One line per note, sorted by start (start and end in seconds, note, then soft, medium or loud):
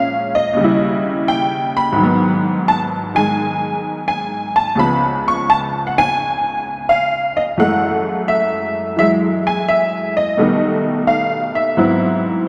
0.00 0.55 A#2 medium
0.00 0.57 F3 soft
0.00 0.59 G#3 soft
0.00 0.61 C#4 medium
0.00 0.38 F5 loud
0.35 1.24 D#5 medium
0.53 1.96 D#2 medium
0.53 1.98 C#3 medium
0.60 1.99 G3 medium
0.64 2.01 E4 medium
1.28 1.77 G5 loud
1.77 2.42 B5 loud
1.92 4.75 G#2 medium
1.92 3.13 D#3 medium
1.99 4.79 F#3 medium
1.99 4.79 B3 medium
2.68 2.79 A5 medium
3.15 4.78 D#3 soft
3.15 4.79 G#3 medium
3.15 4.06 G#5 loud
4.08 4.57 G#5 medium
4.56 4.79 A5 medium
4.75 7.56 C#2 medium
4.75 7.57 C#3 soft
4.75 7.58 F3 soft
4.79 7.59 B3 medium
4.79 5.28 B5 loud
5.28 5.48 C#6 loud
5.50 5.58 A5 medium
5.87 5.96 F#5 medium
5.98 6.92 G#5 loud
6.89 7.38 F5 medium
7.37 7.42 D#5 medium
7.57 10.37 F#2 medium
7.57 8.95 E3 soft
7.57 8.98 G#3 soft
7.57 10.37 A3 medium
7.57 8.25 F#5 medium
8.28 8.94 E5 medium
8.96 10.37 E3 medium
8.96 10.38 F#3 soft
8.96 10.38 G#3 medium
8.96 9.09 E5 medium
9.47 9.67 G#5 medium
9.68 10.12 E5 medium
10.17 11.11 D#5 medium
10.37 11.77 B2 medium
10.37 11.78 D#3 medium
10.37 11.77 G3 medium
10.37 11.77 A3 medium
10.37 11.76 B3 medium
11.07 11.52 F5 medium
11.55 12.43 E5 medium
11.77 12.48 G#2 medium
11.77 12.48 F#3 soft
11.77 12.48 B3 medium
11.77 12.48 C4 medium
11.77 12.48 E4 medium